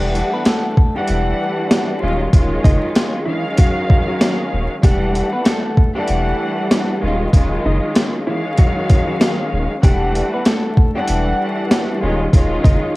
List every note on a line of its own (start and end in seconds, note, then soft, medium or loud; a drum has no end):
0.00 0.22 E1 loud
0.00 0.70 E3 medium
0.00 0.31 G3 medium
0.00 0.71 G3 medium
0.00 0.71 A3 medium
0.00 0.71 D4 medium
0.00 0.31 G4 medium
0.00 0.71 F#5 loud
0.15 closed hi-hat soft
0.34 0.45 B3 medium
0.34 0.45 B4 medium
0.45 0.94 A3 medium
0.45 0.94 A4 medium
0.45 snare loud
0.45 snare medium
0.45 closed hi-hat medium
0.77 kick medium
0.96 2.02 E3 loud
0.96 2.02 G3 medium
0.96 2.29 G3 soft
0.96 2.02 A3 medium
0.96 2.02 D4 medium
0.96 2.29 G4 medium
0.96 2.02 F#5 loud
1.07 1.32 E1 loud
1.07 closed hi-hat medium
1.71 snare loud
1.71 snare medium
1.71 closed hi-hat medium
2.01 2.26 D#1 loud
2.01 2.31 D#3 medium
2.01 2.31 F#3 medium
2.01 2.31 G#3 medium
2.01 2.31 C#4 medium
2.01 2.31 F4 loud
2.32 2.57 D#1 loud
2.32 3.21 D#3 loud
2.32 3.21 F#3 medium
2.32 3.21 G#3 medium
2.32 3.21 C#4 medium
2.32 3.21 F4 loud
2.32 kick loud
2.32 closed hi-hat medium
2.64 2.79 F#1 loud
2.64 2.92 D#4 medium
2.64 2.93 D#5 medium
2.64 kick loud
2.64 closed hi-hat soft
2.95 snare loud
2.95 snare medium
2.95 closed hi-hat medium
3.25 4.73 D#3 loud
3.25 3.44 E3 medium
3.25 4.73 F#3 medium
3.25 4.74 G#3 medium
3.25 4.74 C#4 medium
3.25 3.43 E4 medium
3.25 4.74 F5 loud
3.57 4.06 F#3 medium
3.57 4.05 F#4 medium
3.57 kick medium
3.57 closed hi-hat medium
3.90 kick medium
4.08 4.37 F#3 medium
4.08 4.36 F#4 medium
4.21 snare loud
4.21 snare medium
4.21 closed hi-hat medium
4.53 4.67 D#1 medium
4.82 5.22 E1 loud
4.82 5.70 E3 loud
4.82 5.71 G3 medium
4.82 5.31 G3 medium
4.82 5.71 A3 medium
4.82 5.71 D4 medium
4.82 5.31 G4 medium
4.82 5.71 F#5 loud
4.82 kick loud
4.82 closed hi-hat medium
5.15 closed hi-hat soft
5.33 5.44 B3 medium
5.33 5.44 B4 medium
5.44 5.93 A3 medium
5.44 5.92 A4 medium
5.44 snare loud
5.44 snare medium
5.44 closed hi-hat medium
5.77 kick medium
5.95 7.02 E3 loud
5.95 7.02 G3 medium
5.95 7.29 G3 soft
5.95 7.02 A3 medium
5.95 7.02 D4 medium
5.95 7.29 G4 medium
5.95 7.02 F#5 loud
6.08 6.33 E1 loud
6.08 closed hi-hat medium
6.71 snare loud
6.71 snare medium
6.71 closed hi-hat medium
7.01 7.26 D#1 loud
7.01 7.31 D#3 loud
7.01 7.31 F#3 medium
7.01 7.31 G#3 medium
7.01 7.31 C#4 medium
7.01 7.31 F4 loud
7.33 7.57 D#1 loud
7.33 8.21 D#3 loud
7.33 8.21 F#3 medium
7.33 8.21 G#3 medium
7.33 8.21 C#4 medium
7.33 8.21 F4 loud
7.33 kick loud
7.33 closed hi-hat medium
7.65 7.79 F#1 loud
7.65 7.93 D#4 medium
7.65 7.94 D#5 medium
7.95 snare loud
7.95 snare medium
7.95 closed hi-hat medium
8.27 9.73 D#3 loud
8.27 8.44 E3 medium
8.27 9.73 F#3 medium
8.27 9.73 G#3 medium
8.27 9.74 C#4 medium
8.27 8.44 E4 medium
8.27 9.74 F5 loud
8.57 9.06 F#3 medium
8.57 9.06 F#4 medium
8.57 kick medium
8.57 closed hi-hat medium
8.90 kick medium
8.90 closed hi-hat medium
9.07 9.36 F#3 medium
9.07 9.36 F#4 medium
9.21 snare loud
9.21 snare medium
9.21 closed hi-hat medium
9.53 9.67 D#1 medium
9.82 10.22 E1 loud
9.82 10.70 E3 medium
9.82 10.70 G3 medium
9.82 10.31 G3 medium
9.82 10.71 A3 medium
9.82 10.71 D4 medium
9.82 10.31 G4 medium
9.82 10.71 F#5 loud
9.82 kick loud
9.82 closed hi-hat medium
10.15 closed hi-hat soft
10.34 10.45 B3 medium
10.34 10.45 B4 medium
10.45 10.94 A3 medium
10.45 10.94 A4 medium
10.45 snare loud
10.45 snare medium
10.45 closed hi-hat medium
10.77 kick medium
10.95 12.02 E3 loud
10.95 12.02 G3 medium
10.95 12.29 G3 soft
10.95 12.02 A3 medium
10.95 12.02 D4 medium
10.95 12.29 G4 medium
10.95 12.02 F#5 loud
11.08 11.32 E1 loud
11.08 closed hi-hat medium
11.71 snare loud
11.71 snare medium
11.71 closed hi-hat medium
12.01 12.26 D#1 loud
12.01 12.31 D#3 loud
12.01 12.31 F#3 medium
12.01 12.31 G#3 medium
12.01 12.31 C#4 medium
12.01 12.31 F4 loud
12.32 12.57 D#1 loud
12.32 12.96 D#3 loud
12.32 12.96 F#3 medium
12.32 12.96 G#3 medium
12.32 12.96 C#4 medium
12.32 12.96 F4 loud
12.32 kick loud
12.32 closed hi-hat medium
12.64 12.79 F#1 loud
12.64 12.92 D#4 medium
12.64 12.93 D#5 medium
12.64 kick loud
12.64 closed hi-hat soft